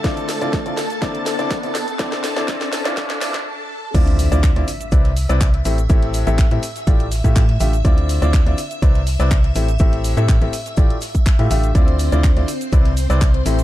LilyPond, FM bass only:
\new Staff \with { instrumentName = "FM bass" } { \clef bass \time 4/4 \key d \dorian \tempo 4 = 123 r1 | r1 | d,8. d,8 d,16 r8 c,8. c,8. a,,8 | a,,8. a,,8 a,16 r8 a,,8. a,8. a,,8 |
d,8. d,8 d,16 r8 c,8. c,8. a,,8 | a,,8. a,8 a,,16 r8 a,,16 r4 a,16 a,,8 | d,8. d,8 d,16 r8 c,8. c,8. a,,8 | }